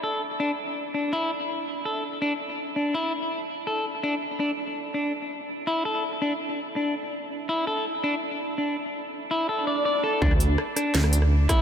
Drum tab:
HH |----------------|----------------|----------------|----------------|
SD |----------------|----------------|----------------|----------------|
BD |----------------|----------------|----------------|----------------|

HH |----------------|----------------|----------------|--x---x---x---x-|
SD |----------------|----------------|----------------|-r--r-r-or-r--r-|
BD |----------------|----------------|----------------|o-------------o-|